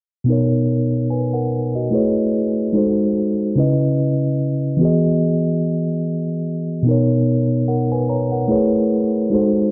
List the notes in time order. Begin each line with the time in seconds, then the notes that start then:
0.24 B2 B3
0.28 D#4 A#4 C#5
1.10 B4 G#5
1.33 A#4 F#5
1.75 F#4 D#5
1.91 A3 E4 G#4 B4
1.95 C#5
2.73 G#3 D#4 F#4 A4
2.77 C5
3.55 C#3 C#4 E4 B4
3.60 D#5
4.77 E3 B3
4.81 F#4 G#4 D#5
6.83 B2 B3 D#4
6.89 A#4 C#5
7.68 A#4 F#5
7.92 B4 G#5
8.09 C#5 A#5
8.32 A#4 F#5
8.48 A3 E4 G#4 B4
8.52 C#5
9.30 G#3 D#4 F#4 A4
9.34 C5